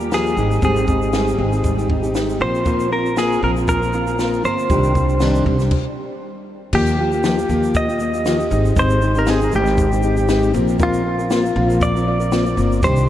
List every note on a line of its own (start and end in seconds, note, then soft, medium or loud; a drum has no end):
0.00 0.33 D#2 medium
0.00 0.36 G3 medium
0.00 0.11 A#3 soft
0.00 0.42 F4 medium
0.00 0.11 F4 soft
0.00 0.11 G4 medium
0.00 shaker medium
0.11 0.37 D#3 medium
0.11 0.36 F3 medium
0.11 0.37 A#3 medium
0.11 0.37 F4 medium
0.11 0.38 G4 medium
0.11 0.64 G#4 medium
0.11 snare loud
0.11 shaker medium
0.26 shaker soft
0.37 0.60 G#1 medium
0.37 0.61 G3 medium
0.37 0.61 G#3 medium
0.37 0.62 C4 medium
0.37 0.62 D#4 medium
0.37 0.63 G4 medium
0.37 shaker medium
0.51 shaker soft
0.62 1.35 G#1 medium
0.62 1.12 G3 medium
0.62 0.86 G#3 medium
0.62 0.87 C4 medium
0.62 0.88 D#4 medium
0.62 0.89 G4 medium
0.62 2.12 G#4 medium
0.62 kick loud
0.62 shaker medium
0.76 shaker medium
0.87 1.12 G#3 medium
0.87 1.12 C4 medium
0.87 1.13 D#4 medium
0.87 1.14 G4 medium
0.87 kick medium
0.87 shaker soft
1.02 shaker soft
1.13 1.63 G3 medium
1.13 1.37 G#3 medium
1.13 1.37 C4 medium
1.13 1.38 D#4 medium
1.13 1.39 G4 medium
1.13 snare loud
1.13 shaker medium
1.28 shaker soft
1.38 2.36 G#1 medium
1.38 1.52 G#3 medium
1.38 1.53 C4 medium
1.38 1.52 D#4 medium
1.38 1.51 G4 medium
1.52 1.79 C4 soft
1.52 1.78 D#4 soft
1.52 1.77 G4 soft
1.52 shaker soft
1.64 2.40 G3 medium
1.64 kick medium
1.64 shaker medium
1.78 1.89 C4 soft
1.78 1.89 D#4 medium
1.78 1.89 G4 medium
1.78 shaker soft
1.89 2.03 G#3 soft
1.89 2.04 C4 medium
1.89 2.03 D#4 medium
1.89 2.02 G4 medium
1.89 kick loud
2.03 2.14 C4 soft
2.03 2.15 D#4 medium
2.03 2.15 G4 medium
2.03 shaker medium
2.15 2.39 G#3 medium
2.15 2.39 C4 medium
2.15 2.41 D#4 medium
2.15 2.41 G4 medium
2.15 snare loud
2.15 shaker medium
2.29 shaker soft
2.40 3.38 A#1 medium
2.40 2.65 F3 medium
2.40 2.64 A#3 medium
2.40 2.65 C4 medium
2.40 2.65 F4 medium
2.40 2.66 A#4 medium
2.40 2.92 C5 loud
2.55 shaker soft
2.65 3.16 F3 medium
2.65 2.89 A#3 medium
2.65 2.90 C4 medium
2.65 2.91 F4 medium
2.65 2.92 A#4 medium
2.65 kick loud
2.65 shaker medium
2.80 shaker medium
2.90 3.15 A#3 medium
2.90 3.16 C4 medium
2.90 3.17 F4 medium
2.90 3.18 A#4 medium
2.90 3.17 A#4 medium
3.06 shaker soft
3.16 3.67 F3 medium
3.16 3.40 A#3 medium
3.16 3.41 C4 medium
3.16 3.42 F4 medium
3.16 3.43 G#4 medium
3.16 3.43 A#4 medium
3.16 snare loud
3.16 shaker medium
3.32 shaker soft
3.41 4.40 A#1 medium
3.41 3.56 A#3 medium
3.41 3.56 C4 medium
3.41 3.56 F4 medium
3.41 3.50 A#4 medium
3.41 3.55 A#4 medium
3.56 3.83 C4 soft
3.56 3.82 F4 soft
3.56 3.80 A#4 soft
3.56 shaker soft
3.68 4.69 F3 medium
3.68 4.45 A#4 medium
3.68 kick medium
3.68 shaker medium
3.82 3.93 C4 soft
3.82 3.94 F4 soft
3.82 3.93 A#4 medium
3.82 shaker soft
3.93 4.07 A#3 soft
3.93 4.08 C4 soft
3.93 4.07 F4 medium
3.93 4.06 A#4 soft
3.93 shaker medium
4.07 4.18 C4 soft
4.07 4.18 F4 soft
4.07 4.18 A#4 medium
4.07 shaker medium
4.18 4.43 A#3 medium
4.18 4.44 C4 medium
4.18 4.44 F4 medium
4.18 4.45 A#4 medium
4.18 snare medium
4.18 shaker medium
4.33 shaker soft
4.44 4.68 G1 medium
4.44 4.69 A#3 medium
4.44 4.69 C4 medium
4.44 4.70 F4 medium
4.44 4.71 A#4 medium
4.44 6.19 C5 medium
4.44 shaker medium
4.59 shaker soft
4.69 5.42 C2 medium
4.69 4.95 C3 medium
4.69 4.95 D#3 medium
4.69 4.93 G3 medium
4.69 4.94 C4 medium
4.69 4.95 D4 medium
4.69 4.96 G4 medium
4.69 kick loud
4.69 shaker medium
4.84 shaker medium
4.94 5.20 G3 medium
4.94 5.20 C4 medium
4.94 5.21 D4 medium
4.94 5.21 G4 medium
4.94 kick medium
4.94 shaker soft
5.09 shaker soft
5.20 5.46 C3 loud
5.20 5.46 D#3 medium
5.20 5.45 G3 loud
5.20 5.45 C4 medium
5.20 5.46 D4 loud
5.20 5.47 G4 loud
5.20 snare loud
5.20 shaker medium
5.35 shaker soft
5.46 5.70 C2 medium
5.46 5.60 G3 medium
5.46 5.60 C4 medium
5.46 5.59 D4 medium
5.46 5.58 G4 medium
5.46 kick medium
5.59 5.72 G3 soft
5.59 5.72 C4 soft
5.59 5.72 D4 medium
5.59 5.71 G4 medium
5.59 snare soft
5.59 shaker soft
5.71 kick loud
5.71 crash medium
6.73 7.46 D#2 loud
6.73 6.98 D#3 medium
6.73 6.97 F3 medium
6.73 6.98 A#3 loud
6.73 6.99 F4 loud
6.73 6.99 G4 loud
6.73 7.79 G4 medium
6.73 kick loud
6.73 crash loud
6.87 shaker medium
6.99 7.12 F3 medium
6.99 7.13 A#3 medium
6.99 7.12 F4 medium
6.99 7.11 G4 medium
7.12 7.24 A#3 soft
7.12 7.24 F4 medium
7.12 7.24 G4 medium
7.12 shaker soft
7.24 7.38 D#3 loud
7.24 7.38 F3 loud
7.24 7.38 A#3 medium
7.24 7.38 F4 loud
7.24 7.37 G4 loud
7.24 snare loud
7.24 shaker medium
7.38 7.49 A#3 soft
7.38 7.49 F4 soft
7.38 7.49 G4 medium
7.38 shaker medium
7.49 8.47 D#2 medium
7.49 7.89 F3 medium
7.49 7.89 A#3 medium
7.49 7.89 F4 medium
7.49 7.87 G4 medium
7.49 shaker medium
7.63 shaker soft
7.75 8.79 D#5 loud
7.75 kick loud
7.75 shaker medium
7.88 8.00 A#3 soft
7.88 8.01 F4 medium
7.88 8.00 G4 medium
7.88 shaker soft
8.00 8.14 F3 soft
8.00 8.15 A#3 medium
8.00 8.14 F4 medium
8.00 8.13 G4 medium
8.00 shaker medium
8.14 8.25 A#3 soft
8.14 8.26 F4 medium
8.14 8.25 G4 medium
8.14 shaker medium
8.26 8.40 D#3 medium
8.26 8.40 F3 medium
8.26 8.40 A#3 medium
8.26 8.39 F4 loud
8.26 8.38 G4 loud
8.26 snare loud
8.26 shaker medium
8.39 8.51 A#3 soft
8.39 8.51 F4 medium
8.39 8.51 G4 medium
8.39 shaker soft
8.50 8.74 G#1 medium
8.50 8.75 G#3 medium
8.50 8.75 C4 medium
8.50 8.76 D#4 medium
8.50 8.76 G4 medium
8.50 shaker medium
8.65 shaker soft
8.76 9.49 G#1 loud
8.76 9.00 G#3 medium
8.76 9.01 C4 medium
8.76 9.02 D#4 medium
8.76 9.02 G4 loud
8.76 9.18 C5 medium
8.76 kick loud
8.76 shaker medium
8.90 shaker medium
9.02 9.16 G#3 medium
9.02 9.16 C4 medium
9.02 9.16 D#4 medium
9.02 9.15 G4 medium
9.02 shaker soft
9.15 9.27 C4 medium
9.15 9.27 D#4 medium
9.15 9.27 G4 medium
9.15 9.30 A#4 medium
9.15 shaker soft
9.27 9.41 G#3 medium
9.27 9.42 C4 loud
9.27 9.41 D#4 loud
9.27 9.40 G4 loud
9.27 9.54 G#4 loud
9.27 snare loud
9.27 shaker medium
9.41 9.52 C4 soft
9.41 9.52 G4 soft
9.41 shaker soft
9.52 10.51 G#1 medium
9.52 9.92 G#3 medium
9.52 9.93 C4 medium
9.52 9.92 D#4 medium
9.52 9.91 G4 medium
9.52 10.52 G4 medium
9.52 shaker medium
9.66 snare soft
9.66 shaker soft
9.78 kick loud
9.78 shaker medium
9.92 10.03 C4 soft
9.92 10.04 D#4 medium
9.92 10.03 G4 medium
9.92 shaker medium
10.03 10.17 G#3 medium
10.03 10.18 C4 medium
10.03 10.17 D#4 medium
10.03 10.16 G4 medium
10.03 shaker medium
10.17 10.28 C4 medium
10.17 10.28 D#4 medium
10.17 10.29 G4 medium
10.17 shaker medium
10.28 10.53 G#3 loud
10.28 10.53 C4 loud
10.28 10.55 D#4 loud
10.28 10.55 G4 loud
10.28 snare loud
10.28 shaker medium
10.43 shaker soft
10.53 11.52 A#1 medium
10.53 10.78 A#3 medium
10.53 10.78 C4 medium
10.53 10.79 F4 medium
10.53 10.79 A#4 medium
10.53 shaker medium
10.68 shaker soft
10.79 11.03 A#3 medium
10.79 11.04 C4 medium
10.79 11.05 F4 medium
10.79 11.05 A#4 loud
10.79 kick loud
10.79 shaker medium
10.83 11.86 F4 medium
10.94 shaker medium
11.04 11.19 A#3 medium
11.04 11.18 F4 medium
11.04 11.17 A#4 medium
11.18 11.30 C4 soft
11.18 11.30 F4 soft
11.18 11.30 A#4 medium
11.18 shaker soft
11.30 11.45 A#3 medium
11.30 11.45 C4 loud
11.30 11.44 F4 loud
11.30 11.43 A#4 loud
11.30 snare loud
11.30 shaker medium
11.44 11.55 C4 soft
11.44 11.56 F4 medium
11.44 11.56 A#4 medium
11.44 shaker soft
11.55 12.54 A#1 loud
11.55 11.95 A#3 medium
11.55 11.96 C4 medium
11.55 11.95 F4 medium
11.55 11.94 A#4 medium
11.70 shaker medium
11.81 12.84 D5 loud
11.81 kick loud
11.81 shaker medium
11.95 12.06 C4 medium
11.95 12.07 F4 medium
11.95 12.07 A#4 medium
11.95 shaker soft
12.07 12.21 A#3 medium
12.07 12.21 C4 medium
12.07 12.20 F4 medium
12.07 12.19 A#4 medium
12.20 12.31 C4 soft
12.20 12.31 F4 medium
12.20 12.32 A#4 medium
12.20 shaker medium
12.32 12.46 A#3 loud
12.32 12.46 C4 medium
12.32 12.45 F4 loud
12.32 12.44 A#4 loud
12.32 snare loud
12.32 shaker medium
12.45 12.56 C4 medium
12.45 12.57 F4 medium
12.45 12.57 A#4 medium
12.45 shaker soft
12.57 12.81 G1 medium
12.57 12.83 A#3 medium
12.57 12.82 C4 medium
12.57 12.83 F4 medium
12.57 12.84 A#4 medium
12.57 shaker medium
12.72 shaker medium
12.82 13.09 C2 loud
12.82 13.08 C3 medium
12.82 13.08 D#3 medium
12.82 13.06 G3 loud
12.82 13.07 C4 loud
12.82 13.08 D4 medium
12.82 13.09 G4 loud
12.82 13.09 C5 medium
12.82 kick loud
12.82 shaker medium
12.96 shaker medium